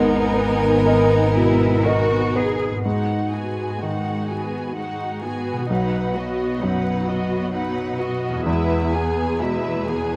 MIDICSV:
0, 0, Header, 1, 10, 480
1, 0, Start_track
1, 0, Key_signature, 5, "minor"
1, 0, Tempo, 1015228
1, 876, Tempo, 983607
1, 1361, Time_signature, 3, 2, 24, 8
1, 1836, Tempo, 934579
1, 5093, End_track
2, 0, Start_track
2, 0, Title_t, "Violin"
2, 0, Program_c, 0, 40
2, 0, Note_on_c, 0, 80, 82
2, 1103, Note_off_c, 0, 80, 0
2, 5093, End_track
3, 0, Start_track
3, 0, Title_t, "Violin section"
3, 0, Program_c, 1, 48
3, 0, Note_on_c, 1, 63, 58
3, 1240, Note_off_c, 1, 63, 0
3, 1363, Note_on_c, 1, 78, 36
3, 1366, Note_on_c, 1, 66, 32
3, 1584, Note_off_c, 1, 78, 0
3, 1586, Note_off_c, 1, 66, 0
3, 1596, Note_on_c, 1, 80, 32
3, 1597, Note_on_c, 1, 68, 31
3, 1835, Note_off_c, 1, 68, 0
3, 1835, Note_off_c, 1, 80, 0
3, 1835, Note_on_c, 1, 66, 31
3, 1835, Note_on_c, 1, 78, 35
3, 2075, Note_on_c, 1, 80, 31
3, 2076, Note_on_c, 1, 68, 31
3, 2080, Note_off_c, 1, 78, 0
3, 2081, Note_off_c, 1, 66, 0
3, 2316, Note_on_c, 1, 66, 33
3, 2316, Note_on_c, 1, 78, 35
3, 2321, Note_off_c, 1, 80, 0
3, 2322, Note_off_c, 1, 68, 0
3, 2544, Note_off_c, 1, 66, 0
3, 2544, Note_off_c, 1, 78, 0
3, 2563, Note_on_c, 1, 80, 35
3, 2564, Note_on_c, 1, 68, 34
3, 2801, Note_on_c, 1, 71, 40
3, 2802, Note_off_c, 1, 80, 0
3, 2803, Note_off_c, 1, 68, 0
3, 2805, Note_on_c, 1, 78, 39
3, 3023, Note_off_c, 1, 71, 0
3, 3025, Note_off_c, 1, 78, 0
3, 3039, Note_on_c, 1, 66, 37
3, 3039, Note_on_c, 1, 75, 38
3, 3272, Note_on_c, 1, 78, 41
3, 3274, Note_on_c, 1, 71, 42
3, 3277, Note_off_c, 1, 66, 0
3, 3277, Note_off_c, 1, 75, 0
3, 3509, Note_on_c, 1, 75, 40
3, 3510, Note_on_c, 1, 66, 42
3, 3512, Note_off_c, 1, 71, 0
3, 3512, Note_off_c, 1, 78, 0
3, 3736, Note_on_c, 1, 71, 45
3, 3739, Note_on_c, 1, 78, 44
3, 3749, Note_off_c, 1, 66, 0
3, 3749, Note_off_c, 1, 75, 0
3, 3963, Note_off_c, 1, 71, 0
3, 3965, Note_off_c, 1, 78, 0
3, 3979, Note_on_c, 1, 66, 43
3, 3981, Note_on_c, 1, 75, 39
3, 4216, Note_on_c, 1, 71, 45
3, 4217, Note_on_c, 1, 76, 48
3, 4221, Note_off_c, 1, 66, 0
3, 4222, Note_off_c, 1, 75, 0
3, 4443, Note_off_c, 1, 71, 0
3, 4443, Note_off_c, 1, 76, 0
3, 4456, Note_on_c, 1, 68, 40
3, 4456, Note_on_c, 1, 80, 44
3, 4699, Note_on_c, 1, 71, 45
3, 4702, Note_off_c, 1, 68, 0
3, 4702, Note_off_c, 1, 80, 0
3, 4702, Note_on_c, 1, 76, 44
3, 4946, Note_on_c, 1, 68, 42
3, 4946, Note_on_c, 1, 80, 39
3, 4947, Note_off_c, 1, 71, 0
3, 4948, Note_off_c, 1, 76, 0
3, 5093, Note_off_c, 1, 68, 0
3, 5093, Note_off_c, 1, 80, 0
3, 5093, End_track
4, 0, Start_track
4, 0, Title_t, "Violin section"
4, 0, Program_c, 2, 48
4, 0, Note_on_c, 2, 70, 65
4, 1241, Note_off_c, 2, 70, 0
4, 5093, End_track
5, 0, Start_track
5, 0, Title_t, "Harp"
5, 0, Program_c, 3, 46
5, 0, Note_on_c, 3, 44, 50
5, 0, Note_on_c, 3, 59, 41
5, 0, Note_on_c, 3, 68, 50
5, 0, Note_on_c, 3, 70, 42
5, 0, Note_on_c, 3, 75, 40
5, 346, Note_off_c, 3, 68, 0
5, 1274, Note_off_c, 3, 44, 0
5, 1280, Note_on_c, 3, 44, 31
5, 1295, Note_off_c, 3, 59, 0
5, 1301, Note_on_c, 3, 59, 27
5, 1323, Note_on_c, 3, 66, 27
5, 1338, Note_off_c, 3, 75, 0
5, 1344, Note_on_c, 3, 75, 27
5, 1360, Note_off_c, 3, 70, 0
5, 2713, Note_on_c, 3, 47, 40
5, 2730, Note_off_c, 3, 59, 0
5, 2737, Note_on_c, 3, 59, 30
5, 2754, Note_off_c, 3, 66, 0
5, 2760, Note_on_c, 3, 66, 32
5, 2776, Note_off_c, 3, 75, 0
5, 2780, Note_off_c, 3, 44, 0
5, 2782, Note_on_c, 3, 75, 32
5, 4131, Note_on_c, 3, 40, 44
5, 4149, Note_off_c, 3, 59, 0
5, 4155, Note_on_c, 3, 59, 38
5, 4175, Note_on_c, 3, 68, 39
5, 4198, Note_on_c, 3, 76, 37
5, 4199, Note_off_c, 3, 47, 0
5, 4223, Note_off_c, 3, 66, 0
5, 4234, Note_off_c, 3, 75, 0
5, 5093, Note_off_c, 3, 40, 0
5, 5093, Note_off_c, 3, 59, 0
5, 5093, Note_off_c, 3, 68, 0
5, 5093, Note_off_c, 3, 76, 0
5, 5093, End_track
6, 0, Start_track
6, 0, Title_t, "French horn section"
6, 0, Program_c, 4, 60
6, 0, Note_on_c, 4, 59, 53
6, 0, Note_on_c, 4, 70, 52
6, 1183, Note_off_c, 4, 59, 0
6, 1201, Note_off_c, 4, 70, 0
6, 5093, End_track
7, 0, Start_track
7, 0, Title_t, "Cello section"
7, 0, Program_c, 5, 48
7, 0, Note_on_c, 5, 63, 57
7, 353, Note_off_c, 5, 63, 0
7, 403, Note_on_c, 5, 63, 56
7, 624, Note_off_c, 5, 63, 0
7, 643, Note_on_c, 5, 64, 57
7, 876, Note_on_c, 5, 66, 66
7, 878, Note_off_c, 5, 64, 0
7, 1120, Note_off_c, 5, 66, 0
7, 1122, Note_on_c, 5, 68, 60
7, 1362, Note_off_c, 5, 68, 0
7, 1362, Note_on_c, 5, 44, 37
7, 2783, Note_off_c, 5, 44, 0
7, 2803, Note_on_c, 5, 47, 45
7, 4205, Note_off_c, 5, 47, 0
7, 4223, Note_on_c, 5, 40, 53
7, 5093, Note_off_c, 5, 40, 0
7, 5093, End_track
8, 0, Start_track
8, 0, Title_t, "Viola section"
8, 0, Program_c, 6, 48
8, 0, Note_on_c, 6, 59, 63
8, 1242, Note_off_c, 6, 59, 0
8, 1357, Note_on_c, 6, 56, 35
8, 1359, Note_on_c, 6, 63, 34
8, 1581, Note_off_c, 6, 56, 0
8, 1582, Note_off_c, 6, 63, 0
8, 1599, Note_on_c, 6, 66, 31
8, 1600, Note_on_c, 6, 59, 32
8, 1834, Note_on_c, 6, 56, 33
8, 1835, Note_on_c, 6, 63, 33
8, 1836, Note_off_c, 6, 59, 0
8, 1836, Note_off_c, 6, 66, 0
8, 2076, Note_on_c, 6, 66, 34
8, 2079, Note_on_c, 6, 59, 35
8, 2080, Note_off_c, 6, 56, 0
8, 2080, Note_off_c, 6, 63, 0
8, 2320, Note_on_c, 6, 56, 33
8, 2321, Note_on_c, 6, 63, 35
8, 2322, Note_off_c, 6, 66, 0
8, 2323, Note_off_c, 6, 59, 0
8, 2546, Note_off_c, 6, 56, 0
8, 2546, Note_off_c, 6, 63, 0
8, 2558, Note_on_c, 6, 66, 37
8, 2562, Note_on_c, 6, 59, 39
8, 2796, Note_on_c, 6, 54, 40
8, 2796, Note_on_c, 6, 63, 39
8, 2800, Note_off_c, 6, 66, 0
8, 2802, Note_off_c, 6, 59, 0
8, 3020, Note_off_c, 6, 54, 0
8, 3020, Note_off_c, 6, 63, 0
8, 3032, Note_on_c, 6, 59, 39
8, 3033, Note_on_c, 6, 66, 41
8, 3270, Note_on_c, 6, 63, 40
8, 3273, Note_off_c, 6, 59, 0
8, 3273, Note_on_c, 6, 54, 39
8, 3274, Note_off_c, 6, 66, 0
8, 3509, Note_on_c, 6, 59, 44
8, 3511, Note_off_c, 6, 63, 0
8, 3511, Note_on_c, 6, 66, 41
8, 3512, Note_off_c, 6, 54, 0
8, 3746, Note_on_c, 6, 54, 45
8, 3746, Note_on_c, 6, 63, 41
8, 3749, Note_off_c, 6, 59, 0
8, 3750, Note_off_c, 6, 66, 0
8, 3969, Note_off_c, 6, 54, 0
8, 3969, Note_off_c, 6, 63, 0
8, 3981, Note_on_c, 6, 66, 44
8, 3985, Note_on_c, 6, 59, 44
8, 4218, Note_on_c, 6, 56, 49
8, 4221, Note_on_c, 6, 64, 50
8, 4222, Note_off_c, 6, 66, 0
8, 4224, Note_off_c, 6, 59, 0
8, 4444, Note_off_c, 6, 56, 0
8, 4446, Note_off_c, 6, 64, 0
8, 4461, Note_on_c, 6, 59, 45
8, 4463, Note_on_c, 6, 68, 46
8, 4704, Note_off_c, 6, 59, 0
8, 4705, Note_off_c, 6, 68, 0
8, 4705, Note_on_c, 6, 56, 45
8, 4705, Note_on_c, 6, 64, 44
8, 4950, Note_off_c, 6, 56, 0
8, 4950, Note_off_c, 6, 64, 0
8, 4953, Note_on_c, 6, 68, 42
8, 4954, Note_on_c, 6, 59, 44
8, 5093, Note_off_c, 6, 59, 0
8, 5093, Note_off_c, 6, 68, 0
8, 5093, End_track
9, 0, Start_track
9, 0, Title_t, "Grand piano"
9, 0, Program_c, 7, 0
9, 0, Control_c, 7, 64, 127
9, 0, Note_on_c, 7, 44, 52
9, 161, Note_on_c, 7, 59, 42
9, 406, Note_on_c, 7, 70, 41
9, 408, Note_on_c, 7, 75, 45
9, 545, Note_off_c, 7, 59, 0
9, 624, Note_off_c, 7, 70, 0
9, 624, Note_off_c, 7, 75, 0
9, 643, Note_on_c, 7, 47, 40
9, 879, Note_on_c, 7, 70, 37
9, 881, Note_on_c, 7, 75, 41
9, 1024, Note_off_c, 7, 47, 0
9, 1101, Note_off_c, 7, 70, 0
9, 1102, Note_off_c, 7, 75, 0
9, 1122, Note_on_c, 7, 59, 39
9, 1342, Note_off_c, 7, 44, 0
9, 1362, Note_off_c, 7, 59, 0
9, 1364, Note_on_c, 7, 44, 35
9, 1370, Control_c, 7, 64, 0
9, 1441, Control_c, 7, 64, 127
9, 1839, Note_on_c, 7, 51, 30
9, 2785, Note_off_c, 7, 44, 0
9, 2803, Note_on_c, 7, 35, 44
9, 2805, Note_off_c, 7, 51, 0
9, 2814, Control_c, 7, 64, 0
9, 2882, Control_c, 7, 64, 127
9, 3279, Note_on_c, 7, 42, 38
9, 4204, Note_off_c, 7, 35, 0
9, 4219, Note_on_c, 7, 40, 48
9, 4226, Note_off_c, 7, 42, 0
9, 4235, Control_c, 7, 64, 0
9, 4318, Control_c, 7, 64, 127
9, 4707, Note_on_c, 7, 47, 39
9, 5093, Note_off_c, 7, 40, 0
9, 5093, Note_off_c, 7, 47, 0
9, 5093, End_track
10, 0, Start_track
10, 0, Title_t, "Double bass section"
10, 0, Program_c, 8, 48
10, 0, Note_on_c, 8, 32, 60
10, 1262, Note_off_c, 8, 32, 0
10, 5093, End_track
0, 0, End_of_file